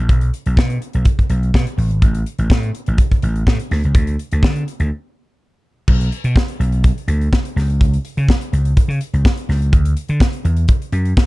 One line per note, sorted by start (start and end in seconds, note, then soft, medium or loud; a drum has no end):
0.09 0.29 B1 medium
0.09 kick loud
0.09 closed hi-hat medium
0.21 closed hi-hat medium
0.34 closed hi-hat medium
0.46 0.56 B1 medium
0.46 closed hi-hat soft
0.57 0.77 B2 loud
0.57 kick loud
0.57 snare loud
0.70 closed hi-hat medium
0.82 closed hi-hat medium
0.93 1.04 B1 medium
0.93 closed hi-hat soft
1.05 kick loud
1.05 closed hi-hat medium
1.19 kick medium
1.19 closed hi-hat soft
1.30 1.50 B1 medium
1.30 closed hi-hat medium
1.43 closed hi-hat soft
1.54 1.65 B2 loud
1.54 kick loud
1.54 snare loud
1.67 closed hi-hat medium
1.78 1.91 A1 loud
1.78 open hi-hat medium
1.91 2.00 G#1 medium
1.91 closed hi-hat soft
2.02 2.22 A1 medium
2.02 kick loud
2.02 closed hi-hat medium
2.15 closed hi-hat medium
2.26 closed hi-hat medium
2.39 2.48 A1 loud
2.39 closed hi-hat soft
2.50 2.70 A2 loud
2.50 kick loud
2.50 snare loud
2.63 closed hi-hat soft
2.75 closed hi-hat medium
2.86 2.97 A1 loud
2.86 closed hi-hat soft
2.98 kick loud
2.98 closed hi-hat medium
3.12 kick medium
3.12 closed hi-hat soft
3.22 3.43 A1 medium
3.22 closed hi-hat medium
3.36 closed hi-hat soft
3.47 3.57 A2 loud
3.47 kick loud
3.47 snare loud
3.59 closed hi-hat medium
3.71 3.82 D2 loud
3.71 snare soft
3.71 open hi-hat medium
3.84 3.93 C#2 medium
3.84 closed hi-hat soft
3.95 4.15 D2 loud
3.95 kick loud
3.95 closed hi-hat medium
4.07 closed hi-hat medium
4.19 closed hi-hat medium
4.31 4.42 D2 medium
4.31 closed hi-hat soft
4.43 4.63 D3 loud
4.43 kick loud
4.43 snare loud
4.56 closed hi-hat medium
4.68 closed hi-hat medium
4.80 4.89 D2 medium
4.80 closed hi-hat soft
5.88 6.08 B1 loud
5.88 kick loud
5.88 crash loud
6.01 closed hi-hat medium
6.12 closed hi-hat medium
6.24 6.34 B2 medium
6.24 closed hi-hat medium
6.36 kick loud
6.36 snare loud
6.48 closed hi-hat medium
6.60 6.90 B1 medium
6.60 closed hi-hat medium
6.72 closed hi-hat soft
6.84 kick loud
6.84 closed hi-hat medium
6.98 closed hi-hat soft
7.08 7.28 D2 medium
7.08 closed hi-hat medium
7.21 closed hi-hat soft
7.33 kick loud
7.33 snare loud
7.45 closed hi-hat medium
7.56 7.96 C#2 loud
7.56 snare soft
7.56 open hi-hat medium
7.70 closed hi-hat soft
7.81 kick loud
7.81 closed hi-hat medium
7.93 closed hi-hat medium
8.05 closed hi-hat medium
8.17 8.27 C#3 medium
8.17 closed hi-hat soft
8.29 kick loud
8.29 snare loud
8.41 closed hi-hat medium
8.53 8.73 C#2 loud
8.53 closed hi-hat medium
8.65 closed hi-hat soft
8.77 muted slap bass stroke soft
8.77 kick loud
8.77 closed hi-hat medium
8.88 8.98 C#3 loud
8.88 closed hi-hat medium
9.01 closed hi-hat medium
9.13 9.23 C#2 medium
9.13 closed hi-hat soft
9.25 kick loud
9.25 snare loud
9.37 closed hi-hat medium
9.49 9.73 C#2 loud
9.49 snare soft
9.49 open hi-hat medium
9.62 closed hi-hat soft
9.73 9.93 D2 loud
9.73 kick loud
9.73 closed hi-hat medium
9.85 closed hi-hat medium
9.97 closed hi-hat medium
10.08 10.19 D3 medium
10.08 closed hi-hat soft
10.20 kick loud
10.20 snare loud
10.33 closed hi-hat medium
10.45 10.65 E2 loud
10.45 closed hi-hat medium
10.57 closed hi-hat soft
10.68 kick loud
10.68 closed hi-hat medium
10.82 closed hi-hat soft
10.92 11.13 F#2 medium
10.92 closed hi-hat medium
11.05 closed hi-hat soft
11.17 kick loud
11.17 snare loud